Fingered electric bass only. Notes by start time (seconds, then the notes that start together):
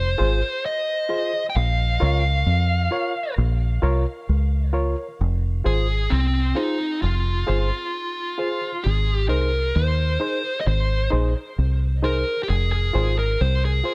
Already playing: F1
0.20 G#1
1.56 A#1
2.02 C#2
2.46 F2
3.38 A#1
3.83 C2
4.29 C#2
5.21 F1
5.66 G#1
6.12 C2
7.03 F1
7.49 G1
8.86 G#1
9.31 C2
9.76 D#2
10.67 G#1
11.13 A#1
11.58 C2
12.50 F1
12.95 G#1
13.41 C2